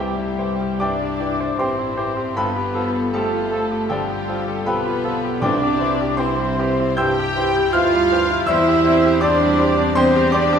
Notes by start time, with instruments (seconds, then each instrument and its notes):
Already playing: grand piano C2 E4 A4 C5 A5, double bass section C2
0.00 bassoon E3, viola section G3, cello section G3, french horn section G3, violin section E4 G4, cor anglais G4, grand piano G4 E5 G5, clarinet G4, flute G5
0.18 grand piano E4
0.39 bassoon E3, cor anglais G4, grand piano C5
0.61 grand piano G4
0.80 grand piano G2 D5 G5 D6, bassoon E3, viola section D4, cello section D4, french horn section D4, cor anglais G4, violin section D5, clarinet D5, flute D6
1.01 grand piano G4
1.20 bassoon E3, grand piano E4, cor anglais G4
1.40 grand piano C5
1.58 double bass section A1, bassoon E3, viola section C4, cello section C4, french horn section C4, violin section E4 C5, cor anglais G4, grand piano G4 C5 G5 C6, clarinet C5, flute C6
1.79 grand piano E4
1.97 bassoon E3, cor anglais G4, grand piano C5
2.17 grand piano G4
2.35 double bass section G1, grand piano G2 B4 G5 B5, bassoon F3, viola section B3, french horn section B3, cello section B3, violin section F4 B4, cor anglais A4, clarinet B4, flute B5
2.56 grand piano G4
2.74 bassoon F3, grand piano F4, cor anglais A4
2.94 grand piano A4
3.12 bassoon F3, viola section A3, cello section A3, french horn section A3, violin section F4 A4, grand piano G4 A4 F5 A5, clarinet A4, cor anglais A4, flute A5
3.33 grand piano F4
3.51 bassoon F3, cor anglais A4, grand piano A4
3.71 grand piano G4
3.88 grand piano D3 G4 D5 G5, bassoon F3, french horn section G3, viola section G3, cello section G3, violin section F4 G4, clarinet G4, cor anglais A4, flute G5
4.10 grand piano G4
4.27 bassoon F3, grand piano F4, cor anglais A4
4.48 grand piano A4
4.65 double bass section B1, bassoon F3, viola section B3, french horn section B3, cello section B3, violin section F4 B4, grand piano G4 B4 G5 B5, cor anglais A4, clarinet B4, flute B5
4.87 grand piano F4
5.04 bassoon F3, cor anglais A4, grand piano A4
5.25 grand piano G4
5.41 double bass section C2, grand piano C2 D5 G5 D6, timpani C3, bassoon E3, viola section D4, french horn section D4, cello section D4, violin section E4 D5, cor anglais C5, clarinet D5, flute D6
5.63 grand piano G4
5.79 bassoon E3, grand piano E4, cor anglais C5
6.01 grand piano G4
6.17 bassoon E3, viola section C4, cello section C4, french horn section C4, violin section E4 C5, grand piano E4 C5 G5 C6, clarinet C5, cor anglais C5, flute C6
6.39 grand piano G3
6.57 bassoon E3, grand piano G4, cor anglais C5
6.80 grand piano E4
6.97 grand piano G2 G5 E6 G6, bassoon E3, violin section E4 G5, viola section G4, cello section G4, french horn section G4, cor anglais C5, clarinet G5, flute G6
7.20 grand piano G4
7.36 bassoon E3, grand piano E4, cor anglais C5
7.57 grand piano G4
7.73 double bass section D2, bassoon E3, grand piano E4 F5 F6, french horn section F4, viola section F4, cello section F4, cor anglais C5, violin section F5, clarinet F5, flute F6
7.93 grand piano G3
8.11 bassoon E3, grand piano G4, cor anglais C5
8.31 grand piano E4
8.47 double bass section E2, grand piano E2 E5 C6 E6, bassoon G3, french horn section E4, viola section E4, cello section E4, violin section C5 E5, cor anglais C5, clarinet E5, flute E6
8.68 grand piano G4
8.84 bassoon G3, grand piano C4, cor anglais C5
9.05 grand piano G4
9.20 bassoon G3, grand piano C4 D5 D6, viola section D4, french horn section D4, cello section D4, cor anglais C5, violin section D5, clarinet D5, flute D6
9.41 grand piano G3
9.59 bassoon G3, grand piano G4, cor anglais C5
9.79 grand piano C4
9.95 grand piano E2 C5 G5 C6, bassoon G3, viola section C4, french horn section C4, cello section C4, violin section C5, clarinet C5, cor anglais C5, flute C6
10.16 grand piano G4
10.32 bassoon G3, grand piano C4 D5 D6, viola section D4, french horn section D4, cello section D4, cor anglais C5, violin section D5, clarinet D5, flute D6
10.53 grand piano G4